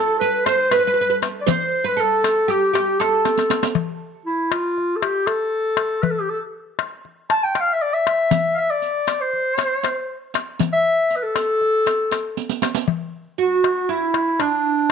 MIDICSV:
0, 0, Header, 1, 5, 480
1, 0, Start_track
1, 0, Tempo, 506757
1, 1396, Time_signature, 9, 3, 24, 8
1, 14131, End_track
2, 0, Start_track
2, 0, Title_t, "Clarinet"
2, 0, Program_c, 0, 71
2, 0, Note_on_c, 0, 69, 97
2, 175, Note_off_c, 0, 69, 0
2, 180, Note_on_c, 0, 71, 91
2, 422, Note_on_c, 0, 72, 96
2, 436, Note_off_c, 0, 71, 0
2, 667, Note_on_c, 0, 71, 99
2, 681, Note_off_c, 0, 72, 0
2, 1152, Note_off_c, 0, 71, 0
2, 1333, Note_on_c, 0, 74, 71
2, 1422, Note_on_c, 0, 72, 99
2, 1436, Note_off_c, 0, 74, 0
2, 1769, Note_off_c, 0, 72, 0
2, 1776, Note_on_c, 0, 71, 89
2, 1898, Note_on_c, 0, 69, 95
2, 1912, Note_off_c, 0, 71, 0
2, 2373, Note_on_c, 0, 67, 82
2, 2387, Note_off_c, 0, 69, 0
2, 2847, Note_on_c, 0, 69, 80
2, 2861, Note_off_c, 0, 67, 0
2, 3562, Note_off_c, 0, 69, 0
2, 4032, Note_on_c, 0, 64, 73
2, 4276, Note_on_c, 0, 65, 74
2, 4290, Note_off_c, 0, 64, 0
2, 4697, Note_on_c, 0, 69, 54
2, 4712, Note_off_c, 0, 65, 0
2, 4758, Note_on_c, 0, 67, 79
2, 4772, Note_off_c, 0, 69, 0
2, 4989, Note_on_c, 0, 69, 91
2, 5003, Note_off_c, 0, 67, 0
2, 5706, Note_on_c, 0, 71, 67
2, 5720, Note_off_c, 0, 69, 0
2, 5787, Note_on_c, 0, 69, 72
2, 5802, Note_off_c, 0, 71, 0
2, 5880, Note_on_c, 0, 67, 67
2, 5895, Note_off_c, 0, 69, 0
2, 5961, Note_on_c, 0, 69, 77
2, 5976, Note_off_c, 0, 67, 0
2, 6051, Note_off_c, 0, 69, 0
2, 6919, Note_on_c, 0, 81, 100
2, 7043, Note_on_c, 0, 79, 86
2, 7057, Note_off_c, 0, 81, 0
2, 7201, Note_on_c, 0, 77, 82
2, 7215, Note_off_c, 0, 79, 0
2, 7316, Note_on_c, 0, 76, 78
2, 7330, Note_off_c, 0, 77, 0
2, 7405, Note_on_c, 0, 74, 83
2, 7419, Note_off_c, 0, 76, 0
2, 7514, Note_on_c, 0, 76, 95
2, 7528, Note_off_c, 0, 74, 0
2, 8085, Note_off_c, 0, 76, 0
2, 8091, Note_on_c, 0, 77, 56
2, 8122, Note_on_c, 0, 76, 86
2, 8136, Note_off_c, 0, 77, 0
2, 8243, Note_on_c, 0, 74, 82
2, 8257, Note_off_c, 0, 76, 0
2, 8721, Note_on_c, 0, 72, 85
2, 8736, Note_off_c, 0, 74, 0
2, 9659, Note_off_c, 0, 72, 0
2, 10160, Note_on_c, 0, 76, 97
2, 10571, Note_on_c, 0, 71, 66
2, 10585, Note_off_c, 0, 76, 0
2, 10633, Note_on_c, 0, 69, 95
2, 10647, Note_off_c, 0, 71, 0
2, 11824, Note_off_c, 0, 69, 0
2, 12697, Note_on_c, 0, 66, 76
2, 13163, Note_on_c, 0, 64, 80
2, 13177, Note_off_c, 0, 66, 0
2, 13644, Note_on_c, 0, 62, 76
2, 13658, Note_off_c, 0, 64, 0
2, 14131, Note_off_c, 0, 62, 0
2, 14131, End_track
3, 0, Start_track
3, 0, Title_t, "Oud"
3, 0, Program_c, 1, 24
3, 0, Note_on_c, 1, 69, 82
3, 197, Note_off_c, 1, 69, 0
3, 201, Note_on_c, 1, 71, 84
3, 434, Note_off_c, 1, 71, 0
3, 438, Note_on_c, 1, 72, 85
3, 679, Note_off_c, 1, 72, 0
3, 683, Note_on_c, 1, 71, 68
3, 735, Note_off_c, 1, 71, 0
3, 746, Note_on_c, 1, 71, 55
3, 813, Note_off_c, 1, 71, 0
3, 827, Note_on_c, 1, 71, 66
3, 878, Note_off_c, 1, 71, 0
3, 889, Note_on_c, 1, 71, 54
3, 945, Note_off_c, 1, 71, 0
3, 957, Note_on_c, 1, 71, 65
3, 1025, Note_off_c, 1, 71, 0
3, 1039, Note_on_c, 1, 71, 59
3, 1102, Note_off_c, 1, 71, 0
3, 1388, Note_on_c, 1, 72, 85
3, 1742, Note_off_c, 1, 72, 0
3, 1746, Note_on_c, 1, 71, 77
3, 1858, Note_off_c, 1, 71, 0
3, 1862, Note_on_c, 1, 69, 75
3, 2346, Note_off_c, 1, 69, 0
3, 2350, Note_on_c, 1, 67, 72
3, 2579, Note_off_c, 1, 67, 0
3, 2590, Note_on_c, 1, 67, 61
3, 2816, Note_off_c, 1, 67, 0
3, 2841, Note_on_c, 1, 69, 59
3, 3521, Note_off_c, 1, 69, 0
3, 12676, Note_on_c, 1, 66, 67
3, 13156, Note_on_c, 1, 64, 68
3, 13168, Note_off_c, 1, 66, 0
3, 13637, Note_off_c, 1, 64, 0
3, 13641, Note_on_c, 1, 62, 62
3, 14131, Note_off_c, 1, 62, 0
3, 14131, End_track
4, 0, Start_track
4, 0, Title_t, "Darbuka"
4, 438, Note_on_c, 9, 63, 68
4, 533, Note_off_c, 9, 63, 0
4, 677, Note_on_c, 9, 63, 67
4, 771, Note_off_c, 9, 63, 0
4, 1162, Note_on_c, 9, 63, 66
4, 1256, Note_off_c, 9, 63, 0
4, 1403, Note_on_c, 9, 64, 85
4, 1498, Note_off_c, 9, 64, 0
4, 1890, Note_on_c, 9, 62, 23
4, 1984, Note_off_c, 9, 62, 0
4, 2124, Note_on_c, 9, 63, 66
4, 2219, Note_off_c, 9, 63, 0
4, 2607, Note_on_c, 9, 63, 65
4, 2702, Note_off_c, 9, 63, 0
4, 2853, Note_on_c, 9, 63, 60
4, 2947, Note_off_c, 9, 63, 0
4, 3080, Note_on_c, 9, 63, 52
4, 3175, Note_off_c, 9, 63, 0
4, 3209, Note_on_c, 9, 62, 61
4, 3304, Note_off_c, 9, 62, 0
4, 3324, Note_on_c, 9, 63, 72
4, 3419, Note_off_c, 9, 63, 0
4, 3438, Note_on_c, 9, 62, 76
4, 3533, Note_off_c, 9, 62, 0
4, 3553, Note_on_c, 9, 64, 78
4, 3647, Note_off_c, 9, 64, 0
4, 4277, Note_on_c, 9, 63, 71
4, 4371, Note_off_c, 9, 63, 0
4, 4525, Note_on_c, 9, 62, 23
4, 4620, Note_off_c, 9, 62, 0
4, 4759, Note_on_c, 9, 63, 68
4, 4854, Note_off_c, 9, 63, 0
4, 4994, Note_on_c, 9, 63, 62
4, 5089, Note_off_c, 9, 63, 0
4, 5464, Note_on_c, 9, 63, 71
4, 5559, Note_off_c, 9, 63, 0
4, 5713, Note_on_c, 9, 64, 75
4, 5807, Note_off_c, 9, 64, 0
4, 6429, Note_on_c, 9, 63, 69
4, 6524, Note_off_c, 9, 63, 0
4, 6678, Note_on_c, 9, 62, 25
4, 6773, Note_off_c, 9, 62, 0
4, 6914, Note_on_c, 9, 63, 70
4, 7008, Note_off_c, 9, 63, 0
4, 7154, Note_on_c, 9, 63, 66
4, 7248, Note_off_c, 9, 63, 0
4, 7642, Note_on_c, 9, 63, 69
4, 7736, Note_off_c, 9, 63, 0
4, 7872, Note_on_c, 9, 64, 88
4, 7967, Note_off_c, 9, 64, 0
4, 8598, Note_on_c, 9, 63, 73
4, 8693, Note_off_c, 9, 63, 0
4, 8842, Note_on_c, 9, 62, 27
4, 8936, Note_off_c, 9, 62, 0
4, 9080, Note_on_c, 9, 63, 70
4, 9174, Note_off_c, 9, 63, 0
4, 9324, Note_on_c, 9, 63, 72
4, 9419, Note_off_c, 9, 63, 0
4, 9805, Note_on_c, 9, 63, 77
4, 9900, Note_off_c, 9, 63, 0
4, 10043, Note_on_c, 9, 64, 77
4, 10137, Note_off_c, 9, 64, 0
4, 10520, Note_on_c, 9, 62, 27
4, 10615, Note_off_c, 9, 62, 0
4, 10756, Note_on_c, 9, 63, 70
4, 10851, Note_off_c, 9, 63, 0
4, 10999, Note_on_c, 9, 62, 29
4, 11094, Note_off_c, 9, 62, 0
4, 11244, Note_on_c, 9, 63, 63
4, 11339, Note_off_c, 9, 63, 0
4, 11483, Note_on_c, 9, 63, 66
4, 11578, Note_off_c, 9, 63, 0
4, 11964, Note_on_c, 9, 63, 67
4, 12059, Note_off_c, 9, 63, 0
4, 12197, Note_on_c, 9, 64, 72
4, 12291, Note_off_c, 9, 64, 0
4, 12921, Note_on_c, 9, 63, 68
4, 13016, Note_off_c, 9, 63, 0
4, 13394, Note_on_c, 9, 63, 66
4, 13489, Note_off_c, 9, 63, 0
4, 13636, Note_on_c, 9, 63, 67
4, 13731, Note_off_c, 9, 63, 0
4, 14131, End_track
5, 0, Start_track
5, 0, Title_t, "Riq"
5, 199, Note_on_c, 9, 54, 18
5, 293, Note_off_c, 9, 54, 0
5, 437, Note_on_c, 9, 54, 48
5, 532, Note_off_c, 9, 54, 0
5, 676, Note_on_c, 9, 54, 52
5, 770, Note_off_c, 9, 54, 0
5, 1158, Note_on_c, 9, 54, 50
5, 1253, Note_off_c, 9, 54, 0
5, 1394, Note_on_c, 9, 54, 66
5, 1489, Note_off_c, 9, 54, 0
5, 1882, Note_on_c, 9, 54, 19
5, 1977, Note_off_c, 9, 54, 0
5, 2124, Note_on_c, 9, 54, 49
5, 2219, Note_off_c, 9, 54, 0
5, 2362, Note_on_c, 9, 54, 17
5, 2457, Note_off_c, 9, 54, 0
5, 2604, Note_on_c, 9, 54, 45
5, 2699, Note_off_c, 9, 54, 0
5, 2838, Note_on_c, 9, 54, 44
5, 2933, Note_off_c, 9, 54, 0
5, 3081, Note_on_c, 9, 54, 52
5, 3176, Note_off_c, 9, 54, 0
5, 3197, Note_on_c, 9, 54, 58
5, 3292, Note_off_c, 9, 54, 0
5, 3315, Note_on_c, 9, 54, 68
5, 3410, Note_off_c, 9, 54, 0
5, 3437, Note_on_c, 9, 54, 80
5, 3531, Note_off_c, 9, 54, 0
5, 7873, Note_on_c, 9, 54, 66
5, 7968, Note_off_c, 9, 54, 0
5, 8354, Note_on_c, 9, 54, 17
5, 8449, Note_off_c, 9, 54, 0
5, 8594, Note_on_c, 9, 54, 47
5, 8689, Note_off_c, 9, 54, 0
5, 9072, Note_on_c, 9, 54, 46
5, 9167, Note_off_c, 9, 54, 0
5, 9314, Note_on_c, 9, 54, 54
5, 9409, Note_off_c, 9, 54, 0
5, 9794, Note_on_c, 9, 54, 51
5, 9889, Note_off_c, 9, 54, 0
5, 10035, Note_on_c, 9, 54, 61
5, 10130, Note_off_c, 9, 54, 0
5, 10518, Note_on_c, 9, 54, 18
5, 10613, Note_off_c, 9, 54, 0
5, 10758, Note_on_c, 9, 54, 51
5, 10852, Note_off_c, 9, 54, 0
5, 11238, Note_on_c, 9, 54, 47
5, 11332, Note_off_c, 9, 54, 0
5, 11474, Note_on_c, 9, 54, 47
5, 11569, Note_off_c, 9, 54, 0
5, 11719, Note_on_c, 9, 54, 50
5, 11813, Note_off_c, 9, 54, 0
5, 11835, Note_on_c, 9, 54, 62
5, 11929, Note_off_c, 9, 54, 0
5, 11954, Note_on_c, 9, 54, 77
5, 12049, Note_off_c, 9, 54, 0
5, 12073, Note_on_c, 9, 54, 89
5, 12167, Note_off_c, 9, 54, 0
5, 14131, End_track
0, 0, End_of_file